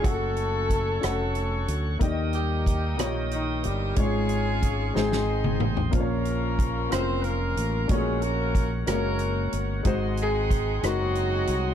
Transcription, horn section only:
\new Staff \with { instrumentName = "Horn section" } { \time 6/8 \key ges \lydian \tempo 4. = 61 << { <a a'>4. <a a'>4 r8 | r8 <g g'>4 <ees ees'>8 <ees ees'>8 <g g'>8 | <aes aes'>4. <aes aes'>4 r8 | <f bes bes'>4. <c' c''>8 <bes bes'>4 |
<aes aes'>8 <bes bes'>4 <bes bes'>4 r8 | r8 <aes aes'>4 <ges ges'>4. | } \\ { <des' ges'>4. <des' ges'>4. | r8 <bes ees'>4. r4 | <des' f'>4. <c' ees'>4. | <des' f'>4. r8 <des' f'>4 |
des'8 <des' ges'>4 <des' ges'>4. | r8 <c' ees'>4 <c' ees'>4. | } >> }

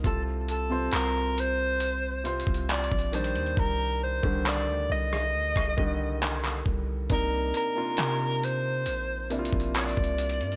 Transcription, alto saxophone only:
\new Staff \with { instrumentName = "Alto saxophone" } { \time 4/4 \key c \dorian \tempo 4 = 68 a'8 a'8 bes'8 c''4 r8 d''8 c''8 | bes'8 c''8 d''8 ees''2 r8 | bes'8 bes'4 c''4 r8 d''4 | }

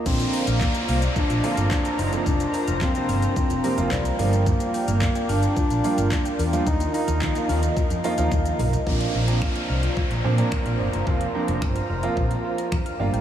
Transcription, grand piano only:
\new Staff \with { instrumentName = "Grand piano" } { \time 4/4 \key bes \major \tempo 4 = 109 <d f bes c' d'>4~ <d f bes c' d'>16 r4 r16 <d f bes c' f'>8. r8 <d f bes c' d'>16 | r4 <c f bes c' f'>16 <c f bes c' f'>8. r8 <c f bes c' g'>16 <c f bes c' f'>8. <f g bes d' f'>8~ | <f g bes d' f'>4 r4. <f g bes d' f'>8. r8 <f g bes d' f'>16 | r4 <ees f bes ees' f'>16 <ees f bes ees' f'>8. r8 <ees f bes ees' f'>16 <ees f bes ees' f'>8. r8 |
<f bes c' d'>8 r16 <f bes c' d'>4 r8. <f bes c' d'>16 <f bes c' d'>8. r8 | <f bes c' f'>16 r16 <f bes c' d'>8. r8 <f bes c' f'>4~ <f bes c' f'>16 bes''8 <g bes d' f' f''>8 | }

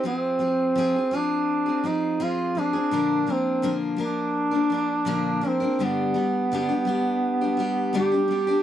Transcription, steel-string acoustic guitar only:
\new Staff \with { instrumentName = "Steel-string acoustic guitar" } { \time 4/4 \key bes \mixolydian \tempo 4 = 84 <f c' f' aes'>8 <f c' f' aes'>8 <f c' f' aes'>16 <c' f' aes'>16 <f c' f' aes'>8. <c' f' aes'>16 <f c' f' aes'>8 <f c' f' aes'>8 <f c' f' aes'>16 <c' f' aes'>16 | <bes, d f bes d' bes'>8 <f bes d' bes'>8 <bes, d f bes d' bes'>8 <f bes d' bes'>8. <f bes d' bes'>16 <f bes d' bes'>8 <bes, d f bes d' bes'>8 <f bes d' bes'>16 <f bes d' bes'>16 | <g, d g b d' g'>8 <g b d' g'>8 <g, d g b d' g'>16 <g b d' g'>16 <g b d' g'>8. <g b d' g'>16 <g b d' g'>8 <g, d g b d' g'>16 <g b d' g'>16 <g b d' g'>16 <g b d' g'>16 | }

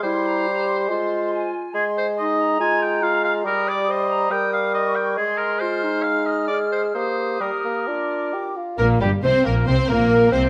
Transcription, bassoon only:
\new Staff \with { instrumentName = "Bassoon" } { \time 4/4 \key f \dorian \tempo 4 = 139 g2 aes4. r8 | \key ees \major aes2 aes2 | g2 g2 | aes1 |
bes4 g8 bes8 d'4 g'8 f'8 | bes8 g8 c'8 bes8 c'8 bes4 c'8 | }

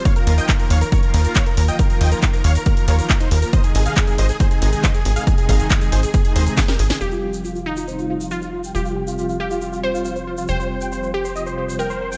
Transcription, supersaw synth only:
\new Staff \with { instrumentName = "Supersaw synth" } { \time 4/4 \key f \minor \tempo 4 = 138 <des'' f''>16 bes'16 bes'16 <ees'' g''>16 bes'16 bes'16 <des'' f''>16 bes'16 <bes' des''>16 bes'16 bes'16 bes'16 <des'' f''>16 bes'16 bes'16 <ees'' g''>16 | bes'16 bes'16 <ees'' g''>16 bes'16 bes'16 bes'16 <des'' f''>16 bes'16 bes'16 bes'16 <bes' des''>16 bes'16 bes'16 <ees' c''>16 bes'16 bes'16 | <c'' ees''>16 aes'16 aes'16 <aes' f''>16 aes'16 aes'16 <c'' ees''>16 aes'16 <aes' c''>16 aes'16 aes'16 aes'16 <c'' ees''>16 aes'16 aes'16 <aes' f''>16 | aes'16 aes'16 <aes' f''>16 aes'16 aes'16 aes'16 <aes' c''>16 aes'16 aes'16 aes'16 <aes' c''>16 aes'16 aes'16 <g' bes'>16 aes'16 aes'16 |
f''16 f'16 f'16 g''16 f'16 f'16 f''16 f'16 c''16 f'16 f'16 f'16 f''16 f'16 f'16 g''16 | f'16 f'16 g''16 f'16 f'16 f'16 f''16 f'16 f'16 f'16 c''16 f'16 f'16 c''16 f'16 f'16 | g''16 c''16 c''16 g''16 c''16 c''16 g''16 c''16 ees''16 c''16 c''16 c''16 g''16 c''16 c''16 g''16 | }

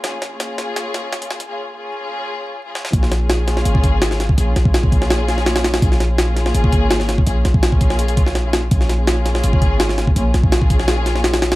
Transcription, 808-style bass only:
\new Staff \with { instrumentName = "808-style bass" } { \clef bass \time 4/4 \key bes \minor \tempo 4 = 166 bes,,2 aes,,2 | r1 | bes,,2 aes,,2 | bes,,8 bes,,16 bes,,2.~ bes,,16 |
bes,,2 aes,,2 | bes,,8 bes,,16 bes,,2.~ bes,,16 | bes,,2 aes,,2 | bes,,8 bes,,16 bes,,2.~ bes,,16 | }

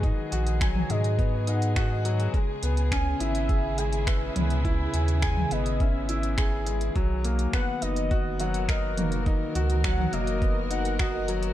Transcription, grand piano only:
\new Staff \with { instrumentName = "Grand piano" } { \time 4/4 \key cis \dorian \tempo 4 = 104 dis'8 fis'8 fis8 gis8 b8 dis'8 fis'8 fis8 | gis8 b8 cis'8 e'8 gis'8 gis8 b'8 b8 | e'8 gis'8 gis8 b8 cis'8 e'8 gis'8 gis8 | fis8 ais8 b8 dis'8 fis'8 fis8 ais'8 ais8 |
dis'8 fis'8 fis8 ais8 b8 dis'8 fis'8 fis8 | }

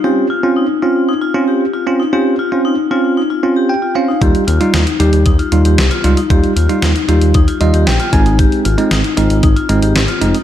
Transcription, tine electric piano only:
\new Staff \with { instrumentName = "Tine electric piano" } { \time 4/4 \key ees \mixolydian \tempo 4 = 115 << { r1 | r2. g''8 f''8 | r1 | r2 r8 ees''8 g''8 aes''8 |
r1 | } \\ { <c' des' f'>8 r16 <c' des' f'>8 r16 <c' des' f'>8 r8 <c' des' f'>8 r8 <c' des' f'>16 r16 | <c' des' f'>8 r16 <c' des' f'>8 r16 <c' des' f'>8 r8 <c' des' f'>8 r8 <c' des' f'>16 r16 | <g ees' f'>8 r16 <g ees' f'>8 r16 <g ees' g'>8 r8 <g ees' f'>8 r8 <g ees' f'>16 r16 | <g ees' f'>8 r16 <g ees' f'>8 r16 <g ees' f'>8 r8 <g ees' f'>8 r8 <aes c' ees'>8~ |
<aes c' ees'>8 r16 <aes c' ees'>8 r16 <aes c' ees'>8 r8 <aes c' ees'>8 r8 <aes c' ees'>16 r16 | } >> }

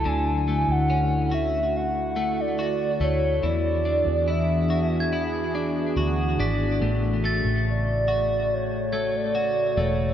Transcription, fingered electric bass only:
\new Staff \with { instrumentName = "Fingered electric bass" } { \clef bass \time 4/4 \key e \mixolydian \tempo 4 = 71 d,8. d,2~ d,8. d,8 | e,8. e,2~ e,16 d,8 gis,,8 | a,,8. a,,2~ a,,8. e,,8 | }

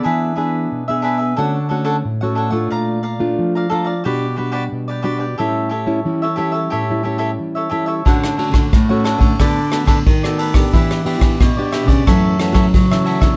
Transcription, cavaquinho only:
\new Staff \with { instrumentName = "Cavaquinho" } { \time 4/4 \key d \major \tempo 4 = 90 <d' gis' b' e''>8 <d' gis' b' e''>8. <gis' b' e''>16 <d' gis' b' e''>16 <gis' b' e''>16 <d' a' cis'' fis''>8 <d' a' cis'' fis''>16 <d' a' cis'' fis''>16 r16 <a' cis'' fis''>16 <d' a' cis'' fis''>16 <a' cis'' fis''>16 | <d'' f'' bes''>8 <d'' f'' bes''>8. <d'' f'' bes''>16 <a' d'' f'' bes''>16 <d'' f'' bes''>16 <fis' g' b' d''>8 <fis' g' b' d''>16 <fis' g' b' d''>16 r16 <g' b' d''>16 <fis' g' b' d''>16 <g' b' d''>16 | <g' a' cis'' e''>8 <g' a' cis'' e''>8. <a' cis'' e''>16 <g' a' cis'' e''>16 <a' cis'' e''>16 <g' a' cis'' e''>8 <g' a' cis'' e''>16 <g' a' cis'' e''>16 r16 <a' cis'' e''>16 <g' a' cis'' e''>16 <a' cis'' e''>16 | <d' a' cis'' fis''>8 <d' a' cis'' fis''>8. <a' cis'' fis''>16 <d' a' cis'' fis''>16 <a' cis'' fis''>16 <d' a' b' d''>8 <d' a' b' d''>16 <d' a' b' d''>16 r16 <a' b' d''>16 <d' a' b' d''>16 <a' b' d''>16 |
<e' g' b' d''>8 <e' g' b' d''>8. <g' b' d''>16 <e' g' b' d''>16 <g' b' d''>16 <fis' a' cis'' e''>8 <fis' a' cis'' e''>16 <fis' a' cis'' e''>16 r16 <a' cis'' e''>16 <fis' a' cis'' e''>16 <a' cis'' e''>16 | }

